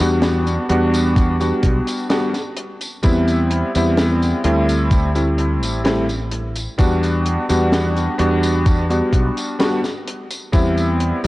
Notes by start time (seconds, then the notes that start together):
0.00 E2 G3 B3 D4 F#4, closed hi-hat
0.22 snare, closed hi-hat, tambourine
0.47 closed hi-hat, tambourine
0.69 E2 G3 B3 D4 F#4, closed hi-hat
0.94 closed hi-hat, tambourine
1.16 kick, closed hi-hat, tambourine
1.40 G3 B3 D4 F#4, closed hi-hat, tambourine
1.63 B1, kick, closed hi-hat
1.87 closed hi-hat, tambourine
2.09 G3 B3 D4 F#4, snare, closed hi-hat, tambourine
2.33 snare, closed hi-hat, tambourine
2.57 closed hi-hat
2.81 closed hi-hat, tambourine
3.02 E2 G3 B3 C4 E4, kick, closed hi-hat, tambourine
3.27 closed hi-hat, tambourine
3.50 closed hi-hat
3.75 E2 G3 B3 C4 E4, closed hi-hat, tambourine
3.97 snare, closed hi-hat, tambourine
4.22 closed hi-hat, tambourine
4.44 D2 G3 A3 C4 E4, closed hi-hat
4.69 closed hi-hat, tambourine
4.91 kick, closed hi-hat, tambourine
5.15 G3 A3 C4 E4, closed hi-hat, tambourine
5.38 closed hi-hat
5.63 A1, closed hi-hat, tambourine
5.84 G3 A3 C4 E4, snare, closed hi-hat, tambourine
6.09 closed hi-hat, tambourine
6.31 closed hi-hat
6.56 closed hi-hat, tambourine
6.78 E2 G3 B3 D4 F#4, kick, closed hi-hat, tambourine
7.03 closed hi-hat, tambourine
7.26 closed hi-hat
7.49 E2 G3 B3 D4 F#4, closed hi-hat, tambourine
7.72 snare, closed hi-hat, tambourine
7.96 closed hi-hat, tambourine
8.18 E2 G3 B3 D4 F#4, closed hi-hat
8.43 closed hi-hat, tambourine
8.66 kick, closed hi-hat, tambourine
8.90 G3 B3 D4 F#4, closed hi-hat, tambourine
9.13 B1, kick, closed hi-hat
9.37 closed hi-hat, tambourine
9.59 G3 B3 D4 F#4, snare, closed hi-hat, tambourine
9.84 snare, closed hi-hat, tambourine
10.07 closed hi-hat
10.31 closed hi-hat, tambourine
10.52 E2 G3 B3 C4 E4, kick, closed hi-hat, tambourine
10.78 closed hi-hat, tambourine
11.00 closed hi-hat
11.24 G3